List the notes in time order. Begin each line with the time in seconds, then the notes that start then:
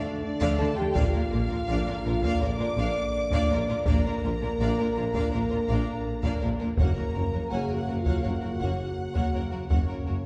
Already playing: D3 A3 D4 D5
0.22 D4 D5
0.41 D3 A3 D4 D5 F5, taiko
0.58 D2 D3 A3 D4 A4 D5 A5
0.76 D3 A3 D4 F4 G4 A4 G5
0.94 A#1 A#2 D3 A#3 D4 F4 D5 F5, taiko
1.12 A#2 A#3 D4 A#4 D5
1.31 A#1 A#2 A#3 D4 F4 A#4
1.48 A#2 A#4 D5
1.54 A#3 D4
1.67 A#1 A#2 A#3 D4 D5 F5
1.86 A#2 A#3 D4 A#4 D5
2.05 A#1 A#2 A#3 D4 F4 A#4
2.22 A#2 A#3 D4 D5 F5, taiko
2.40 A#1 A#2 A#3 D4 A#4 D5 D6
2.58 A#2 A#3 D4 F4 A#4
2.76 A#1 A#2 A#3 D4 D5 F5
3.32 A#2 A#3 D4 D5 F5, taiko
3.50 A#1 A#2 A#3 D4 A#4 D5
3.68 A#2 A#3 D4 F4 A#4
3.85 A#1 A#2 D3 A#3 D4 A#4 D5 F5 A#5, taiko
4.05 A#2 A#3 D4 A#4 D5
4.23 A#1 A#2 A#3 D4 F4 A#4
4.41 A#2 A#3 D4 A#4 D5
4.59 A#1 A#2 A#3 D4 D5 F5
4.79 A#2 A#3 D4 A#4 D5
4.96 A#1 A#2 A#3 D4 F4 A#4
5.13 A#2 A#3 D4 D5 F5, taiko
5.31 A#1 A#2 A#4 D5 A#5
5.35 A#3 D4
5.50 A#2 A#3 D4 F4 A#4
5.68 A#1 A#2 A#3 D4 D5 F5
6.23 A#2 D4 D5 F5, taiko
6.27 A#3
6.40 A#1 A#2 D4 A#4 D5
6.45 A#3
6.60 A#2 A#3 D4 F4 A#4
6.76 F#1 F#2 C#3 A#3 A#4 C#5 F#5 A#5, taiko
6.81 A#3 F#4
6.95 F#2 A#3 F#4 A#4 C#5
7.14 F#1 F#2 A#3 F#4 A#4
7.33 F#2 A#3 F#4 A#4 C#5
7.50 F#1 F#2 A#3 F#4 G#4 C#5 F#5 G#5
7.68 F#2 A#3 F#4 A#4 C#5
7.75 F#4 F#5
7.87 F#1 F#2 A#3 F#4 A#4
8.00 F4 F5
8.05 F#2 A#3 F#4 C#5 F#5, taiko
8.23 F#1 F#2 A#3 F#4 A#4 C#5 F#5
8.41 F#2 A#3 F#4 A#4
8.59 F#1 F#2 A#3 F#4 C#5 F#5
9.14 F#2 A#3 F#4 C#5 F#5, taiko
9.34 F#1 F#2 A#3 F#4 A#4 C#5
9.51 F#2 A#3 F#4 A#4
9.69 F#1 F#2 C#3 A#3 C#4 F#4 C#5 F#5, taiko
9.88 F#2 A#3 F#4 A#4 C#5
10.06 F#1 F#2 A#3 F#4 A#4